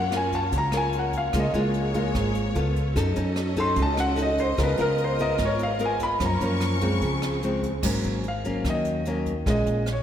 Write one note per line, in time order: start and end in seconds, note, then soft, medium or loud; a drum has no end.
0.00 0.49 F#2 medium
0.00 0.50 F#3 medium
0.00 1.33 F#3 medium
0.00 2.51 A#3 medium
0.00 2.52 F4 medium
0.00 1.30 C#5 medium
0.00 0.13 F#5 loud
0.12 0.52 C#4 medium
0.12 0.52 F4 medium
0.12 0.52 A#4 medium
0.12 cross-stick medium
0.12 closed hi-hat soft
0.17 0.34 G#5 medium
0.32 0.53 A5 medium
0.32 kick soft
0.32 closed hi-hat soft
0.52 1.30 C#2 medium
0.52 1.31 C#3 medium
0.52 kick medium
0.52 closed hi-hat medium
0.58 0.75 A#5 loud
0.72 1.30 C#4 medium
0.72 1.31 F4 medium
0.72 1.31 A#4 medium
0.72 cross-stick medium
0.72 closed hi-hat soft
0.77 0.95 G#5 medium
0.93 closed hi-hat soft
0.99 1.16 F#5 medium
1.13 kick soft
1.13 closed hi-hat soft
1.18 1.35 F5 medium
1.33 1.53 C#2 loud
1.33 2.13 C#3 medium
1.33 1.46 G#3 medium
1.33 1.46 A#3 medium
1.33 1.47 F4 medium
1.33 2.54 G#4 medium
1.33 2.95 C#5 medium
1.33 kick medium
1.33 cross-stick medium
1.33 closed hi-hat medium
1.40 1.50 D#5 medium
1.54 2.11 C#2 medium
1.54 1.91 G#3 medium
1.54 1.92 A#3 medium
1.54 1.92 F4 medium
1.54 closed hi-hat soft
1.74 closed hi-hat soft
1.94 2.52 G#3 medium
1.94 2.53 A#3 medium
1.94 2.52 F4 medium
1.94 kick soft
1.94 closed hi-hat soft
2.15 2.53 G#1 medium
2.15 2.54 G#2 medium
2.15 kick medium
2.15 cross-stick medium
2.15 closed hi-hat medium
2.35 closed hi-hat soft
2.55 2.93 C#2 loud
2.55 2.94 B3 medium
2.55 2.96 B3 medium
2.55 2.94 F4 medium
2.55 2.96 F4 medium
2.55 4.56 A4 medium
2.55 2.95 A4 medium
2.55 closed hi-hat soft
2.75 kick soft
2.75 closed hi-hat soft
2.96 3.15 F#2 loud
2.96 3.75 F#3 medium
2.96 3.13 C#4 medium
2.96 4.57 C#4 medium
2.96 3.13 D#4 medium
2.96 4.57 F#4 medium
2.96 3.14 A4 medium
2.96 6.18 D#5 medium
2.96 kick medium
2.96 cross-stick medium
2.96 closed hi-hat medium
3.16 3.74 F#2 medium
3.16 3.53 C#4 medium
3.16 3.54 D#4 medium
3.16 3.54 A4 medium
3.16 closed hi-hat soft
3.36 cross-stick medium
3.36 closed hi-hat soft
3.56 4.14 C#4 medium
3.56 4.15 D#4 medium
3.56 4.15 A4 medium
3.56 3.78 C6 medium
3.56 kick soft
3.56 closed hi-hat soft
3.76 4.54 C#2 medium
3.76 4.56 C#3 medium
3.76 kick medium
3.76 closed hi-hat medium
3.82 4.00 A5 loud
3.97 4.19 F#5 loud
3.97 cross-stick medium
3.97 closed hi-hat soft
4.16 4.56 C#4 medium
4.16 4.56 D#4 medium
4.16 4.57 A4 medium
4.16 closed hi-hat soft
4.22 4.40 D#5 medium
4.38 4.59 C5 medium
4.38 kick soft
4.38 closed hi-hat soft
4.57 4.77 C#2 loud
4.57 5.37 C#3 medium
4.57 4.70 B3 medium
4.57 6.20 B3 medium
4.57 4.70 F4 medium
4.57 7.81 F4 medium
4.57 4.70 A#4 medium
4.57 6.20 A#4 medium
4.57 kick medium
4.57 cross-stick medium
4.57 closed hi-hat medium
4.63 4.81 B4 medium
4.77 5.36 C#2 medium
4.77 5.16 B3 medium
4.77 5.16 F4 medium
4.77 5.16 A#4 medium
4.77 5.00 A#4 medium
4.77 closed hi-hat soft
4.98 closed hi-hat soft
5.04 5.21 C5 medium
5.18 5.77 B3 medium
5.18 5.78 F4 medium
5.18 5.78 A#4 medium
5.18 5.40 D#5 loud
5.18 kick soft
5.18 closed hi-hat soft
5.38 6.17 G#1 medium
5.38 6.19 G#2 medium
5.38 kick medium
5.38 cross-stick medium
5.38 closed hi-hat medium
5.45 5.62 C#5 medium
5.59 closed hi-hat soft
5.63 5.81 F5 medium
5.79 6.19 B3 medium
5.79 6.19 F4 medium
5.79 6.20 A#4 medium
5.79 closed hi-hat soft
5.86 6.03 G#5 medium
6.00 6.22 B5 loud
6.00 kick soft
6.00 closed hi-hat soft
6.20 7.00 F#2 medium
6.20 6.40 F#2 loud
6.20 6.38 F3 medium
6.20 7.01 A#3 medium
6.20 6.38 A#3 medium
6.20 6.38 C#4 medium
6.20 7.01 A#4 medium
6.20 7.82 C#6 medium
6.20 kick medium
6.20 cross-stick medium
6.20 closed hi-hat medium
6.26 6.61 A#5 medium
6.41 6.98 F#2 medium
6.41 6.79 F3 medium
6.41 6.79 A#3 medium
6.41 6.79 C#4 medium
6.41 closed hi-hat soft
6.61 cross-stick medium
6.61 closed hi-hat soft
6.81 7.39 F3 medium
6.81 7.39 G#3 medium
6.81 7.40 C4 medium
6.81 kick soft
6.81 closed hi-hat soft
7.01 7.79 C#2 medium
7.01 7.82 C#3 medium
7.01 7.83 C4 medium
7.01 7.82 G#4 medium
7.01 kick medium
7.01 closed hi-hat medium
7.22 cross-stick medium
7.22 closed hi-hat soft
7.43 7.71 F3 medium
7.43 7.71 G#3 medium
7.43 7.71 C4 medium
7.43 closed hi-hat soft
7.63 kick soft
7.63 closed hi-hat medium
7.83 8.02 G#1 medium
7.83 8.63 G#2 medium
7.83 8.24 F#3 medium
7.83 8.24 A#3 medium
7.83 8.24 C#4 medium
7.83 kick medium
7.83 cross-stick medium
7.83 crash medium
8.03 8.61 G#1 medium
8.03 closed hi-hat soft
8.24 closed hi-hat soft
8.28 8.64 F5 medium
8.44 9.03 F#3 medium
8.44 9.03 A#3 medium
8.44 9.03 C#4 medium
8.44 kick soft
8.44 closed hi-hat soft
8.64 9.42 D#2 medium
8.64 9.45 D#3 medium
8.64 kick medium
8.64 cross-stick medium
8.64 closed hi-hat medium
8.70 9.24 D#5 medium
8.85 closed hi-hat soft
9.05 9.32 F#3 medium
9.05 9.33 A#3 medium
9.05 9.33 C#4 medium
9.05 closed hi-hat soft
9.26 kick soft
9.26 closed hi-hat soft
9.46 9.65 A#1 medium
9.46 10.03 A#2 medium
9.46 9.87 G#3 medium
9.46 9.87 C#4 medium
9.46 9.87 F4 medium
9.46 9.86 D#5 medium
9.46 kick medium
9.46 cross-stick medium
9.46 closed hi-hat medium
9.66 10.03 A#1 medium
9.66 closed hi-hat soft
9.86 cross-stick medium
9.86 closed hi-hat soft
9.92 10.03 C#5 medium